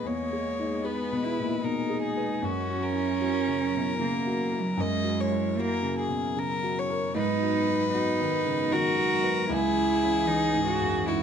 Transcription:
Already playing: G#3 G#4 B4 D#5
0.04 E2 A#3 C#5
0.33 G#4
0.59 D#4
0.83 B3 G#4 B4
1.12 B2
1.23 E4
1.40 A#2
1.62 B2 D#4 A#4
1.90 G#4
2.03 G#4
2.17 B4
2.39 F#2 F#3 C#4 E4 A#4
2.44 F#4
2.67 F#4
2.83 A#4
2.94 E4
3.21 F#4
3.48 C#3
3.75 B2
4.00 C#3 A#3
4.26 F#4
4.51 A#4
4.61 F#3
4.77 F#2 G#3 D#5
5.04 F#4
5.20 C#5
5.31 E4
5.58 A#3 F#4 A#4
5.82 C#3
5.99 G#4
6.09 B2
6.37 C#3 A#4
6.63 F#4
6.79 C#5
6.90 A#4
7.14 G#2 F#3 B3 D#4 B4
7.42 F#4
7.68 D#4
7.92 D#4 F#4
8.20 D#3
8.46 C#3
8.71 D#3 F#4 A#4
8.96 F#4
9.23 B4
9.49 C#2 E3 C#4 E4 G#4
9.77 E4
10.03 C#4
10.27 E3 D#4
10.54 G#2
10.66 F#4
10.81 F#2
11.06 G#2 E4 F#4

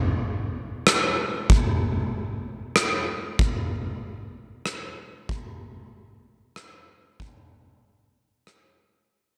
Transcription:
0.87 cross-stick
1.50 kick
2.76 cross-stick
3.39 kick
4.66 cross-stick
5.29 kick
6.56 cross-stick
7.20 kick
8.47 cross-stick

